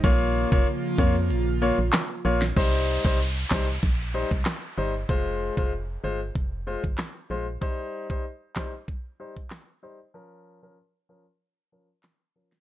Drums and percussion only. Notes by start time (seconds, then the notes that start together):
0.04 kick, closed hi-hat
0.36 closed hi-hat
0.52 kick
0.67 closed hi-hat
0.98 kick, closed hi-hat
1.30 closed hi-hat
1.62 closed hi-hat
1.93 cross-stick, snare, clap, closed hi-hat
2.25 closed hi-hat
2.42 snare
2.57 kick, crash
3.05 kick
3.51 kick, snare, clap
3.83 kick
4.31 kick
4.45 cross-stick, snare, clap
5.09 kick
5.57 kick
6.35 kick
6.84 kick
6.98 cross-stick, snare, clap
7.62 kick
8.10 kick
8.56 kick, snare, clap
8.88 kick
9.37 kick
9.51 cross-stick, snare, clap
12.03 cross-stick, snare, clap
12.52 snare